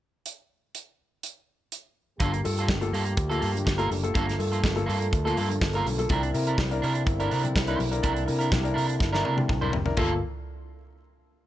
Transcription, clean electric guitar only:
2.20 2.40 A#3 medium
2.20 2.34 F4 loud
2.20 2.32 A4 loud
2.33 muted clean electric guitar stroke soft
2.45 muted clean electric guitar stroke soft
2.59 2.67 A#3 medium
2.59 2.68 F4 medium
2.59 2.69 A4 medium
2.82 muted clean electric guitar stroke soft
2.93 3.13 A#3 medium
2.93 3.06 F4 medium
2.93 3.05 A4 medium
3.06 muted clean electric guitar stroke soft
3.17 muted clean electric guitar stroke soft
3.29 3.38 A#3 medium
3.29 3.40 F4 medium
3.29 3.40 A4 medium
3.40 3.57 A#3 medium
3.40 3.54 F4 medium
3.40 3.52 A4 medium
3.53 muted clean electric guitar stroke medium
3.65 muted clean electric guitar stroke soft
3.78 3.89 A#3 medium
3.78 3.90 F4 medium
3.78 3.91 A#4 medium
3.90 muted clean electric guitar stroke soft
4.04 muted clean electric guitar stroke soft
4.14 4.34 A#3 medium
4.14 4.28 F4 loud
4.14 4.26 A4 loud
4.27 muted clean electric guitar stroke soft
4.39 muted clean electric guitar stroke soft
4.52 4.62 A#3 soft
4.52 4.62 F4 medium
4.52 4.63 A4 medium
4.76 muted clean electric guitar stroke soft
4.86 5.07 A#3 medium
4.86 5.00 F4 medium
4.86 4.99 A4 medium
5.00 muted clean electric guitar stroke soft
5.11 muted clean electric guitar stroke soft
5.25 5.35 A#3 medium
5.25 5.37 F4 medium
5.25 5.37 A4 medium
5.37 5.53 A#3 medium
5.37 5.50 F4 medium
5.37 5.49 A4 medium
5.50 muted clean electric guitar stroke soft
5.62 muted clean electric guitar stroke soft
5.75 5.86 A#3 medium
5.75 5.87 F4 medium
5.75 5.88 A#4 loud
5.87 muted clean electric guitar stroke medium
6.00 muted clean electric guitar stroke medium
6.11 6.30 D4 medium
6.11 6.23 E4 loud
6.11 6.22 A#4 loud
6.23 muted clean electric guitar stroke soft
6.34 muted clean electric guitar stroke soft
6.47 6.57 D4 soft
6.47 6.58 E4 medium
6.47 6.59 A#4 medium
6.71 muted clean electric guitar stroke medium
6.82 7.02 D4 medium
6.82 6.96 E4 medium
6.82 6.94 A#4 loud
6.95 muted clean electric guitar stroke soft
7.06 muted clean electric guitar stroke soft
7.20 7.30 D4 medium
7.20 7.30 E4 medium
7.20 7.32 A#4 medium
7.31 7.47 D4 medium
7.31 7.44 E4 medium
7.31 7.43 A#4 medium
7.44 muted clean electric guitar stroke medium
7.56 muted clean electric guitar stroke soft
7.68 7.79 D4 medium
7.68 7.79 E4 medium
7.68 7.80 C5 medium
7.80 muted clean electric guitar stroke soft
7.92 muted clean electric guitar stroke soft
8.03 8.23 D4 medium
8.03 8.15 E4 medium
8.03 8.13 A#4 medium
8.14 muted clean electric guitar stroke soft
8.26 muted clean electric guitar stroke soft
8.39 8.50 D4 soft
8.39 8.51 E4 medium
8.39 8.51 A#4 medium
8.63 muted clean electric guitar stroke soft
8.74 8.95 D4 medium
8.74 8.88 E4 medium
8.74 8.87 A#4 medium
8.88 muted clean electric guitar stroke soft
9.00 muted clean electric guitar stroke soft
9.13 9.22 D4 medium
9.13 9.24 E4 medium
9.13 9.24 A#4 medium
9.24 9.40 D4 medium
9.24 9.38 E4 medium
9.24 9.36 A#4 medium
9.38 muted clean electric guitar stroke soft
9.48 muted clean electric guitar stroke soft
9.61 9.72 D4 medium
9.61 9.73 E4 medium
9.61 9.74 C5 medium
9.73 muted clean electric guitar stroke soft
9.86 muted clean electric guitar stroke soft
9.97 10.13 A#3 medium
9.97 10.13 F4 loud
9.97 10.13 A4 loud

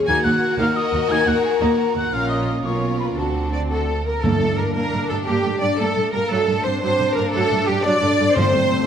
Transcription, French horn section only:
0.08 0.59 F#4 medium
0.59 1.97 A#4 medium
2.14 2.65 C#4 medium
2.65 3.17 F4 medium
3.17 3.52 F#4 soft
3.53 3.70 D4 soft
3.70 4.05 A3 soft
4.04 4.13 A#3 soft
4.23 4.57 A3 medium
4.58 4.75 A#3 medium
4.76 5.10 A#3 medium
5.09 5.26 A3 medium
5.26 5.60 G3 medium
5.61 5.79 D4 medium
5.79 6.14 A3 medium
6.14 6.31 A#3 medium
6.32 6.66 A3 medium
6.66 6.80 C4 medium
6.81 7.15 C4 medium
7.16 7.34 A#3 medium
7.33 7.68 A3 medium
7.67 7.75 G3 medium
7.84 8.35 D4 medium
8.35 8.87 C4 loud

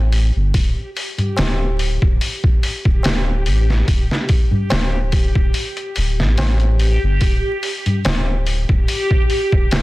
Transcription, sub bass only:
0.00 0.31 A1 medium
0.35 0.52 G1 medium
0.54 0.74 D1 medium
1.37 1.97 D1 medium
2.02 2.19 D1 loud
2.86 3.47 D1 medium
3.46 3.83 A1 medium
3.88 4.08 D1 medium
4.71 5.31 D1 medium
5.36 5.52 D1 medium
5.96 6.21 D1 medium
6.19 6.98 A1 medium
7.02 7.19 G1 medium
7.21 7.41 D1 medium
8.05 8.64 D1 medium
8.69 8.86 D1 loud
9.53 9.82 D1 medium

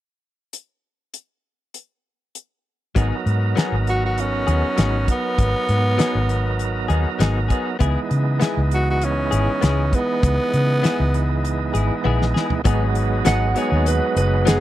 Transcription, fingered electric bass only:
2.96 3.10 G#1 medium
3.26 3.54 G#2 medium
3.72 4.44 G#1 medium
4.48 4.62 D#2 medium
4.64 muted fingered electric bass stroke soft
4.78 5.05 G#1 medium
5.39 5.53 G#1 medium
5.69 5.96 G#2 medium
6.15 6.86 G#1 medium
6.90 7.04 D#2 medium
7.05 muted fingered electric bass stroke soft
7.20 7.48 G#1 medium
7.81 7.95 C#2 medium
8.11 8.39 C#3 medium
8.57 9.29 C#2 medium
9.32 9.47 G#1 medium
9.63 9.90 C#2 medium
10.23 10.38 C#2 medium
10.54 10.81 C#3 medium
11.00 11.71 C#2 medium
11.74 11.89 G#1 medium
11.91 muted fingered electric bass stroke soft
12.05 12.33 A#1 medium
12.65 13.22 G#1 medium
13.26 13.54 G#1 medium
13.72 13.99 D#2 medium
14.16 14.58 F#1 medium

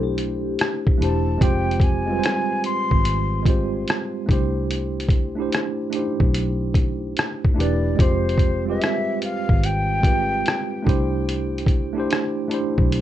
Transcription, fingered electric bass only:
0.00 0.55 B1 medium
1.01 1.38 E1 medium
1.41 2.20 F1 medium
2.92 3.84 G#1 medium
4.29 5.48 C2 loud
6.20 7.13 B1 medium
7.58 7.95 E1 medium
7.99 8.77 F1 medium
9.49 10.42 G#1 medium
10.87 12.06 C2 medium
12.78 13.01 B1 medium

